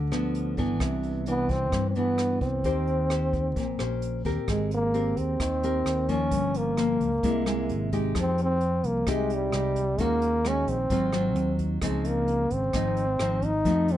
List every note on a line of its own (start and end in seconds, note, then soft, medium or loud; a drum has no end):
0.00 0.10 D2 medium
0.00 0.79 D3 medium
0.11 0.55 D2 medium
0.11 0.54 F3 medium
0.11 0.54 B3 medium
0.11 0.54 D4 medium
0.11 cross-stick soft
0.11 closed hi-hat soft
0.35 closed hi-hat soft
0.57 0.80 G1 medium
0.57 1.23 E3 medium
0.57 1.23 B3 medium
0.57 1.23 D4 medium
0.57 kick soft
0.57 closed hi-hat soft
0.80 1.72 C2 medium
0.80 1.70 C3 medium
0.80 kick medium
0.80 cross-stick medium
0.80 closed hi-hat soft
1.03 closed hi-hat soft
1.26 1.92 E3 medium
1.26 1.53 B3 medium
1.26 1.92 D4 medium
1.26 closed hi-hat soft
1.49 1.89 C4 loud
1.49 kick medium
1.49 closed hi-hat soft
1.72 1.94 G2 medium
1.72 2.62 G2 medium
1.72 kick medium
1.72 cross-stick medium
1.72 closed hi-hat soft
1.90 1.98 C4 medium
1.95 2.39 G2 medium
1.95 2.61 E3 medium
1.95 2.42 B3 medium
1.95 2.61 B3 medium
1.95 2.61 D4 medium
1.95 closed hi-hat soft
2.18 cross-stick medium
2.18 closed hi-hat soft
2.41 2.64 C2 medium
2.41 3.98 C4 medium
2.41 kick medium
2.41 closed hi-hat soft
2.64 3.56 D#2 medium
2.64 3.54 D#3 medium
2.64 3.07 G4 medium
2.64 3.07 C5 medium
2.64 kick medium
2.64 closed hi-hat soft
2.87 closed hi-hat soft
3.10 3.56 G4 medium
3.10 3.56 C5 medium
3.10 cross-stick medium
3.10 closed hi-hat soft
3.33 kick soft
3.33 closed hi-hat soft
3.56 3.78 A#1 medium
3.56 4.46 A#2 medium
3.56 kick medium
3.56 closed hi-hat soft
3.79 4.22 A#1 medium
3.79 4.21 C#4 medium
3.79 4.22 G4 medium
3.79 4.22 C5 medium
3.79 cross-stick soft
3.79 closed hi-hat soft
4.02 closed hi-hat soft
4.25 4.36 D#2 medium
4.25 4.90 C4 medium
4.25 4.90 G4 medium
4.25 4.91 A#4 medium
4.25 kick soft
4.25 closed hi-hat soft
4.48 5.13 G#1 medium
4.48 5.38 G#3 medium
4.48 4.70 G#3 medium
4.48 kick medium
4.48 cross-stick medium
4.48 closed hi-hat medium
4.71 5.20 A#3 medium
4.71 closed hi-hat soft
4.94 5.40 C4 medium
4.94 5.40 G4 medium
4.94 5.40 A#4 medium
4.94 closed hi-hat soft
5.17 5.38 D#2 medium
5.17 6.12 C4 medium
5.17 kick soft
5.17 closed hi-hat soft
5.40 5.83 D#2 medium
5.40 6.29 D#3 medium
5.40 kick medium
5.40 cross-stick medium
5.40 closed hi-hat medium
5.63 6.05 C4 medium
5.63 6.06 G4 medium
5.63 6.06 A#4 medium
5.63 closed hi-hat soft
5.86 6.28 D#2 medium
5.86 cross-stick medium
5.86 closed hi-hat soft
6.09 6.74 F3 medium
6.09 6.74 A#3 medium
6.09 6.74 C#4 medium
6.09 6.58 C#4 loud
6.09 kick soft
6.09 closed hi-hat soft
6.31 6.96 G1 medium
6.31 7.21 G2 medium
6.31 kick medium
6.31 closed hi-hat medium
6.54 7.93 A#3 medium
6.54 closed hi-hat soft
6.77 7.08 F3 medium
6.77 7.09 A#3 medium
6.77 7.09 C#4 medium
6.77 cross-stick medium
6.77 closed hi-hat soft
7.00 7.22 C#2 medium
7.00 kick soft
7.00 closed hi-hat soft
7.23 7.71 C2 medium
7.23 8.13 C3 medium
7.23 7.43 G#3 medium
7.23 7.43 A#3 medium
7.23 7.43 E4 medium
7.23 kick medium
7.23 closed hi-hat medium
7.46 7.89 G#3 medium
7.46 7.89 A#3 soft
7.46 7.89 E4 medium
7.46 cross-stick medium
7.46 closed hi-hat soft
7.69 8.12 G#1 medium
7.69 closed hi-hat soft
7.92 8.58 G#3 medium
7.92 8.58 D#4 medium
7.92 8.58 G4 medium
7.92 kick soft
7.92 closed hi-hat soft
8.15 8.80 F2 medium
8.15 9.05 F3 medium
8.15 kick medium
8.15 cross-stick medium
8.15 closed hi-hat medium
8.20 8.39 C4 medium
8.38 closed hi-hat soft
8.43 8.88 C4 medium
8.61 closed hi-hat soft
8.84 9.05 C2 medium
8.84 9.13 A#3 medium
8.84 kick soft
8.84 closed hi-hat soft
9.07 9.50 C2 medium
9.07 9.96 C3 medium
9.07 9.49 G#3 medium
9.07 9.49 D#4 medium
9.07 9.50 G4 medium
9.07 kick medium
9.07 cross-stick medium
9.07 closed hi-hat medium
9.12 9.36 G#3 medium
9.30 closed hi-hat soft
9.34 10.03 G3 medium
9.52 9.95 C2 medium
9.52 9.83 G#3 medium
9.52 9.83 D#4 soft
9.52 9.83 G4 medium
9.52 cross-stick medium
9.52 closed hi-hat soft
9.76 kick soft
9.76 closed hi-hat soft
9.98 10.63 D#2 loud
9.98 10.88 D#3 medium
9.98 10.41 G#3 medium
9.98 10.49 A#3 loud
9.98 10.41 C#4 medium
9.98 10.42 F#4 medium
9.98 kick medium
9.98 closed hi-hat medium
10.22 closed hi-hat soft
10.44 10.75 G#3 medium
10.44 10.75 C#4 medium
10.44 10.72 C#4 loud
10.44 10.76 F#4 medium
10.44 cross-stick medium
10.44 closed hi-hat soft
10.67 10.89 A#1 medium
10.67 11.60 C4 medium
10.67 kick soft
10.67 closed hi-hat soft
10.90 11.36 G#1 medium
10.90 11.80 G#2 medium
10.90 11.10 F#3 medium
10.90 11.10 C4 medium
10.90 11.10 F4 medium
10.90 kick medium
10.90 closed hi-hat medium
11.13 11.78 F#3 medium
11.13 11.78 C4 medium
11.13 11.79 F4 medium
11.13 cross-stick medium
11.13 closed hi-hat soft
11.36 11.78 D#2 medium
11.36 closed hi-hat soft
11.59 kick soft
11.59 closed hi-hat soft
11.82 12.47 C#2 medium
11.82 12.71 C#3 medium
11.82 12.44 F3 medium
11.82 12.09 G#3 medium
11.82 12.44 C4 medium
11.82 12.44 D#4 medium
11.82 kick medium
11.82 cross-stick medium
11.82 closed hi-hat medium
12.05 12.55 A#3 medium
12.05 closed hi-hat soft
12.28 closed hi-hat soft
12.51 12.72 G#1 medium
12.51 13.47 C4 medium
12.51 kick soft
12.51 closed hi-hat soft
12.73 13.16 G#1 medium
12.73 13.63 G#2 medium
12.73 13.04 F3 medium
12.73 13.04 C4 medium
12.73 13.04 D#4 medium
12.73 kick medium
12.73 cross-stick medium
12.73 closed hi-hat medium
12.97 closed hi-hat soft
13.19 13.62 G#1 medium
13.19 13.49 F3 soft
13.19 13.49 C4 medium
13.19 13.50 D#4 medium
13.19 cross-stick medium
13.19 closed hi-hat soft
13.42 13.94 D#4 loud
13.42 kick soft
13.42 closed hi-hat soft
13.65 13.97 F2 loud
13.65 13.97 F3 medium
13.65 13.95 A3 medium
13.65 13.95 D#4 soft
13.65 13.95 F#4 medium
13.65 kick medium
13.65 closed hi-hat medium
13.88 closed hi-hat soft
13.92 13.97 C4 medium